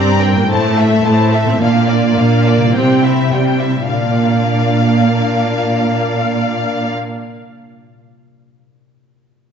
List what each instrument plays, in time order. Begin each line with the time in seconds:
Already playing: harp G2 G3 A#3 G4 D5, cello section G2, viola section C4, violin section G4 D5 A#5
0.21 violin section A#4 G5
0.32 harp A2, viola section A#3
0.36 harp C4
0.41 harp E4
0.45 viola section A3, harp C5
0.49 cello section A2, violin section E4 C5 A5
0.77 violin section A4 E5
1.05 cello section A2, viola section A3, violin section E4 C5 A5
1.33 violin section A4 E5
1.44 harp A#2, viola section C4
1.49 harp A#3
1.53 harp D4
1.58 viola section A#3, harp D5
1.62 cello section A#2, violin section D4 D5 F5
1.89 violin section F4 D5 F5
2.17 cello section A#2, viola section A#3, violin section D4 D5 F5
2.46 violin section F4 D5 F5
2.57 harp C3
2.61 harp G3
2.66 harp E4
2.70 harp C5
2.74 cello section C3, viola section C4, violin section G4 C5 G5
3.03 violin section E4 G4 E5
3.31 cello section C3, viola section G3, violin section G4 C5 G5
3.59 violin section E4 G4 E5
3.88 harp A#2, cello section A#2, viola section A#3, violin section D4 D5 F5
3.96 harp A#3
4.04 harp F4
4.10 harp D5
4.17 harp F5